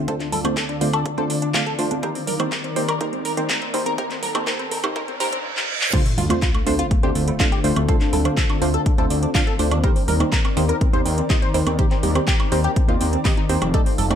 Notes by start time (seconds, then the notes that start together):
Already playing: D2 D3 F4, riser
0.08 D3 A3 D4 F4 A4 C5 D5, kick, closed hi-hat
0.20 D4, clap, closed hi-hat
0.32 A4, open hi-hat, low conga, high woodblock
0.44 D3 A3 D4 F4 C5, closed hi-hat, high conga, high woodblock
0.57 A4, kick, clap, closed hi-hat
0.69 D4, closed hi-hat, high woodblock
0.81 D3 A3 D4 F4 C5, open hi-hat, high conga
0.93 A4, closed hi-hat, high woodblock
1.06 D4, kick, closed hi-hat
1.17 D3 A3 D4 F4 A4 C5, closed hi-hat, high conga, high woodblock
1.30 D4, open hi-hat
1.42 D4, closed hi-hat
1.54 D3 A3 D4 F4 F5, kick, clap, open hi-hat, high conga, high woodblock
1.67 A4, closed hi-hat
1.79 A3 D4 F4 C5, open hi-hat
1.91 D4, closed hi-hat, high conga
2.03 D#2 D#3 A#3 D#4 G4 A#4 C5 D5, kick, closed hi-hat, high woodblock
2.15 C4, open hi-hat
2.27 A#4, open hi-hat, low conga
2.40 D#3 A#3 C4 D#4 G4 C5, closed hi-hat, high conga, high woodblock
2.52 A#4, kick, clap, closed hi-hat
2.64 C4, closed hi-hat
2.76 D#3 A#3 C4 D#4 G4 C5, open hi-hat, high conga
2.88 A#4, closed hi-hat, high woodblock
3.01 D#3 A#3 D#4 G4 A#4 C5, kick, closed hi-hat
3.13 C4, closed hi-hat, high conga
3.25 A#4, open hi-hat, high woodblock
3.37 D#3 A#3 C4 D#4 G4 C5, closed hi-hat
3.49 A#4, kick, clap, closed hi-hat, high conga
3.62 C4, closed hi-hat
3.74 D#3 A#3 C4 D#4 G4 C5, open hi-hat, high woodblock
3.86 A#4, closed hi-hat, high conga
3.98 D#3 A#3 D#4 G4 A4 A#4 C5, kick, closed hi-hat
4.10 C4, clap, closed hi-hat, high woodblock
4.23 A#4, open hi-hat, low conga
4.35 D#3 A#3 C4 D#4 G4 C5, closed hi-hat, high conga, high woodblock
4.47 D#3 A#3 D#4 G4 A#4 C5, kick, clap, closed hi-hat
4.59 C4, closed hi-hat, high woodblock
4.71 A#4, open hi-hat, high conga
4.84 D#3 A#3 C4 D#4 G4 C5, closed hi-hat, high woodblock
4.96 D#3 A#3 D#4 G4 A#4 C5, kick, closed hi-hat, reverse cymbal, high woodblock
5.08 C4, closed hi-hat, high conga
5.20 D#3 A#3 D#4 G4 A#4 C5, open hi-hat
5.33 C4, closed hi-hat
5.57 clap
5.81 clap
5.93 D3 A3 C4 D4 F4 C5, kick, closed hi-hat, crash, sub drop, high woodblock
6.06 A3, open hi-hat
6.18 D2 F4, open hi-hat, low conga
6.29 D3 A3 D4 F4 C5, closed hi-hat, high conga, high woodblock
6.42 F4, kick, clap, closed hi-hat, high woodblock
6.54 A3, closed hi-hat, high woodblock
6.67 D2 D3 A3 D4 F4 C5, open hi-hat, high conga
6.79 F4, closed hi-hat, high woodblock
6.91 A3, kick, closed hi-hat
7.03 D2 D3 A3 D4 F4 G4 C5, closed hi-hat, high conga
7.15 D2 A3, open hi-hat
7.28 A3, closed hi-hat, high woodblock
7.40 D3 A3 D4 F4 F5, kick, clap, closed hi-hat, high conga
7.52 G4, closed hi-hat
7.64 D2 D3 A3 D4 F4 C5, open hi-hat, high woodblock
7.76 D2 A3, closed hi-hat, high conga, high woodblock
7.88 D3 A3 D4 F4 A4 C5, kick, closed hi-hat
8.01 D4, clap, closed hi-hat
8.13 D2 A4, open hi-hat, low conga, high woodblock
8.25 D3 A3 D4 F4 C5, closed hi-hat, high conga, high woodblock
8.37 A4, kick, clap, closed hi-hat
8.50 D4, closed hi-hat, high woodblock
8.62 D2 D3 A3 D4 F4 C5, open hi-hat
8.74 A4, closed hi-hat
8.86 D4, kick, closed hi-hat
8.98 D2 D3 A3 D4 F4 A4 C5, closed hi-hat, high conga, high woodblock
9.10 D2 D4, open hi-hat
9.23 D4, closed hi-hat
9.34 D3 A3 D4 F4 F5, kick, clap, open hi-hat, high conga, high woodblock
9.47 A4, closed hi-hat
9.59 D2 A3 D4 F4 C5, open hi-hat
9.71 D#2 D4, closed hi-hat, high conga, high woodblock
9.83 D#3 A#3 D#4 G4 A#4 C5 D5, kick, closed hi-hat, high woodblock
9.96 C4, open hi-hat
10.08 D#2 A#4, open hi-hat, low conga
10.20 D#3 A#3 C4 D#4 G4 C5, closed hi-hat, high conga, high woodblock
10.32 A#4, kick, clap, closed hi-hat
10.45 C4, closed hi-hat, high woodblock
10.57 D#2 D#3 A#3 C4 D#4 G4 C5, open hi-hat, high conga
10.69 A#4, closed hi-hat, high woodblock
10.81 C4, kick, closed hi-hat
10.93 D#2 D#3 A#3 D#4 G4 C5, closed hi-hat, high conga
11.05 D#2 C4, open hi-hat, high woodblock
11.18 C4, closed hi-hat
11.30 D#3 A#3 C4 D#4 G4 D#5, kick, clap, closed hi-hat, high conga
11.42 C5, closed hi-hat
11.54 D#2 D#3 A#3 C4 D#4 G4 C5, open hi-hat, high woodblock
11.67 D#2 C4, closed hi-hat, high conga, high woodblock
11.79 D#3 A#3 D#4 G4 C5, kick, closed hi-hat
11.91 C4, clap, closed hi-hat, high woodblock
12.03 D#2 G4, open hi-hat, low conga
12.15 D#3 A#3 C4 D#4 G4 C5, closed hi-hat, high conga, high woodblock
12.27 G4, kick, clap, closed hi-hat
12.39 C4, closed hi-hat, high woodblock
12.52 D#2 D#3 A#3 C4 D#4 G4 C5, open hi-hat
12.64 G4, closed hi-hat
12.76 C4, kick, closed hi-hat, high woodblock
12.88 D#2 D#3 A#3 D#4 F4 G4 C5, closed hi-hat, high conga
13.01 D#2 C4, open hi-hat
13.13 C4, closed hi-hat
13.24 D#3 A#3 C4 D#4 G4 D#5, kick, clap, open hi-hat, high conga, high woodblock
13.37 D#4, closed hi-hat
13.49 D#2 A#3 C4 D#4 G4 C5, open hi-hat
13.62 F1 C4, closed hi-hat, high conga, high woodblock
13.74 A3 D#4 F4 G4 A4 D5, kick, closed hi-hat, high woodblock
13.86 C4, open hi-hat
13.98 F1 A4, open hi-hat, low conga
14.10 A3 C4 D#4 G4 D5, closed hi-hat, high conga, high woodblock